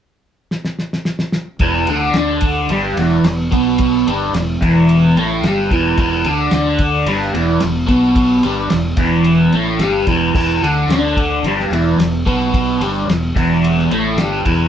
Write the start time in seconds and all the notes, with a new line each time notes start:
0.51 snare
0.65 snare
0.79 snare
0.93 snare
1.05 snare
1.19 snare
1.32 snare
1.59 E1 E2 E3, kick, ride
1.87 D2 D3 D4, ride
2.14 D2 D3 D4, snare, ride
2.41 kick, ride
2.68 G1 G2 G3, ride
2.97 E1 E2 E3, ride
3.23 E1 E2, snare, ride
3.51 B1 B2 B3, kick, ride
3.78 kick, ride
4.06 G1 G2 G3, ride
4.33 E1 E2, snare, ride
4.61 E1 E2 E3, kick, ride
4.89 ride
5.16 A1 A2 A3, ride
5.42 G1, snare, ride
5.46 G2 G3
5.71 E1 E2 E3, kick, ride
5.97 E1 E2 E3, kick, ride
6.24 D2 D3 D4, ride
6.51 D2 D3 D4, snare, ride
6.79 kick, ride
7.06 G1 G2 G3, ride
7.33 E1 E2 E3, ride
7.60 E1 E2, snare, ride
7.87 B1 B2 B3, kick, ride
8.16 kick, ride
8.43 G1 G2 G3, ride
8.70 E1 E2, snare, ride
8.97 E1 E2 E3, kick, ride
9.24 ride
9.52 A1 A2 A3, ride
9.79 G1 G2 G3, snare, ride
10.07 E1 E2 E3, kick, ride
10.34 E1 E2 E3, kick, crash
10.61 D2 D3 D4, ride
10.88 D2 D3 D4, snare, ride
11.17 kick, ride
11.43 G1 G2 G3, ride
11.60 snare
11.70 E1 E2 E3, ride
11.98 E1 E2, snare, ride
12.26 B1 B2 B3, kick, ride
12.54 kick, ride
12.80 G1 G2 G3, ride
13.07 E1 E2, snare, ride
13.35 E1 E2 E3, kick, ride
13.64 ride
13.79 snare
13.91 A1 A2 A3, ride
14.17 G1 G2 G3, snare, ride
14.45 E1 E2 E3, kick, ride